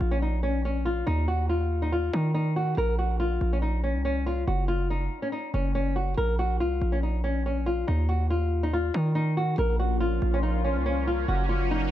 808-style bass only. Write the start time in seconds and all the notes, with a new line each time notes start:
0.01 A#1
1.07 D#2
2.13 D#3
2.77 A#1
3.41 A#1
3.95 C2
4.48 F#1
5.54 F#1
6.18 A#1
6.60 C2
6.82 A#1
7.88 D#2
8.94 D#3
9.58 A#1
10.22 A#1
10.76 C2
11.28 F#1